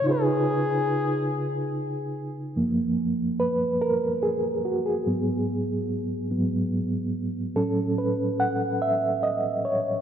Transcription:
<<
  \new Staff \with { instrumentName = "Flugelhorn" } { \time 6/8 \key fis \major \tempo 4. = 48 gis'2~ gis'8 r8 | r2. | r2. | r2. | }
  \new Staff \with { instrumentName = "Reed electric piano" } { \time 6/8 \key fis \major <cis dis' eis' gis' b'>2. | r4 b'8 ais'8 gis'8 fis'16 gis'16~ | gis'16 r2 r8. | a'8 b'8 fis''8 e''8 dis''8 cis''8 | }
  \new Staff \with { instrumentName = "Reed electric piano" } { \clef bass \time 6/8 \key fis \major r2. | <fis, eis ais>8 r2 r8 | <gis, fis b>8 r4 <gis, fis b>8 r4 | <a, fis cis'>2. | }
>>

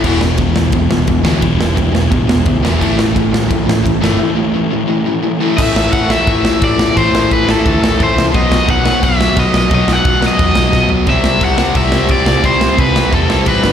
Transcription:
<<
  \new Staff \with { instrumentName = "Overdriven electric guitar" } { \time 4/4 \key a \dorian \tempo 4 = 174 r1 | r1 | r1 | r1 |
e''4 fis''8 e''4. d''4 | c''4 b'8 a'4. c''8. r16 | dis''4 fis''4 e''4 dis''8 dis''8 | dis''8 fis''4 dis''2 r8 |
e''4 fis''4 e''4 d''4 | c''4 b'4 a'4 b'8. r16 | }
  \new Staff \with { instrumentName = "Distorted electric guitar" } { \time 4/4 \key a \dorian <e g b e'>1 | <e g b e'>1 | <a, e a c' e'>1 | <a, e a c' e'>1 |
r1 | r1 | r1 | r1 |
<c g c' e'>2~ <c g c' e'>8 <c g c' e'>8 <c g c' e'>4 | <c g c' e'>2~ <c g c' e'>8 <c g c' e'>8 <c g c' e'>8 <g, d g b d'>8 | }
  \new Staff \with { instrumentName = "Distorted electric guitar" } { \clef bass \time 4/4 \key a \dorian <e, b, e>8 <e, b,>8 <e, b,>8 <e, b,>8 <e, b,>8 <e, b,>8 <e, b,>8 <e, b, e>8 | <e, b,>8 <e, b,>8 <e, b,>8 <e, b,>8 <e, b,>8 <e, b,>8 <e, b,>8 <e, b, e>8 | <a, e a>8 <a, e>8 <a, e>8 <a, e>8 <a, e>8 <a, e>8 <a, e>8 <a, e a>8 | <a, e>8 <a, e>8 <a, e>8 <a, e>8 <a, e>8 <a, e>8 <a, e>8 <a, e a>8 |
<a, e a>4. <a, e a>4. <a, e a>4 | <a, e a>4. <a, e a>4. <a, e a>4 | <b, fis b>4. <b, fis b>4. <b, fis b>4 | <b, fis b>4. <b, fis b>4. <b, fis b>4 |
<c g c'>4. <c g c'>4. <c g c'>4 | <c g c'>4. <c g c'>4. <c g c'>8 <g, d g>8 | }
  \new Staff \with { instrumentName = "Overdriven electric guitar" } { \clef bass \time 4/4 \key a \dorian <e, b, e>8 <e, b,>8 <e, b,>8 <e, b,>8 <e, b,>8 <e, b,>8 <e, b,>8 <e, b, e>8 | <e, b,>8 <e, b,>8 <e, b,>8 <e, b,>8 <e, b,>8 <e, b,>8 <e, b,>8 <e, b, e>8 | <a, e a>8 <a, e>8 <a, e>8 <a, e>8 <a, e>8 <a, e>8 <a, e>8 <a, e a>8 | <a, e>8 <a, e>8 <a, e>8 <a, e>8 <a, e>8 <a, e>8 <a, e>8 <a, e a>8 |
<a, e a>4. <a, e a>2~ <a, e a>8 | <a, e a>4. <a, e a>2~ <a, e a>8 | <b, fis b>4. <b, fis b>2~ <b, fis b>8 | <b, fis b>4. <b, fis b>2~ <b, fis b>8 |
<c g c'>4. <c g c'>2~ <c g c'>8 | <c g c'>4. <c g c'>2 <g, d g>8 | }
  \new Staff \with { instrumentName = "Picked electric bass" } { \clef bass \time 4/4 \key a \dorian e,,4 e,,8 e,,8 e,,8 e,,8 e,,8 d,8 | e,,8 e,,8 e,,4 a,,8 e,,8 d,8 e,,8 | a,,4 a,,8 a,,8 a,,8 a,,8 a,,8 g,,8 | r1 |
a,,8 a,,8 a,,4 a,,4 a,,8 a,,8 | a,,8 a,,8 a,,4 d,8 a,,8 a,,8 c,8 | b,,8 b,,8 b,,4 b,,4 b,,8 b,,8 | b,,8 b,,8 b,,4 e,8 b,,8 b,,8 b,,8 |
c,8 c,8 c,4 c,4 c,8 c,8 | c,8 c,8 c,4 e,8 c,8 a,,8 g,,8 | }
  \new DrumStaff \with { instrumentName = "Drums" } \drummode { \time 4/4 <cymc bd>8 sn8 <bd cymr>8 sn8 <bd cymr>8 sn8 <bd cymr>8 sn8 | <bd cymr>8 sn8 <bd cymr>8 sn8 <bd cymr>8 sn8 <bd cymr>8 sn8 | <cymc bd>8 sn8 <bd cymr>8 sn8 <bd cymr>8 sn8 <bd cymr>8 sn8 | r4 r4 r4 r4 |
<cymc bd>8 sn8 <cymc bd>8 sn8 <cymc bd>8 sn8 <cymc bd>8 sn8 | <cymc bd>8 sn8 <cymc bd>8 sn8 <cymc bd>8 sn8 <cymc bd>8 sn8 | <cymc bd>8 sn8 <cymc bd>8 sn8 <cymc bd>8 sn8 <cymc bd>8 sn8 | <cymc bd>8 sn8 <cymc bd>8 sn8 <cymc bd>8 sn8 <bd sn>8 tomfh8 |
<cymc bd>8 sn8 <cymc bd>8 sn8 <cymc bd>8 sn8 <cymc bd>8 sn8 | <cymc bd>8 sn8 <cymc bd>8 sn8 <cymc bd>8 sn8 <cymc bd>8 sn8 | }
>>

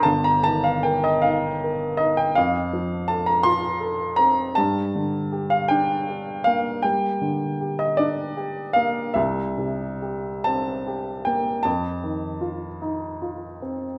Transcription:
\new Staff \with { instrumentName = "Upright piano" } { \time 12/8 \key g \minor \tempo 4. = 52 << { a''16 bes''16 a''16 f''16 g''16 ees''16 f''4 ees''16 g''16 f''4 a''16 bes''16 c'''4 bes''8 | a''4~ a''16 f''16 g''4 f''8 g''4~ g''16 ees''16 d''4 f''8 | e''4. a''4 g''8 a''4. r4. | } \\ { g,,8 ees8 bes'8 ees'8 bes'8 ees'8 f,8 f8 a'8 f'8 a'8 c'8 | g,8 d8 g'8 d'8 g'8 bes8 g8 d8 g'8 d'8 g'8 bes8 | c,8 c8 g'8 c'8 g'8 bes8 f,8 ees8 f'8 ees'8 f'8 c'8 | } >> }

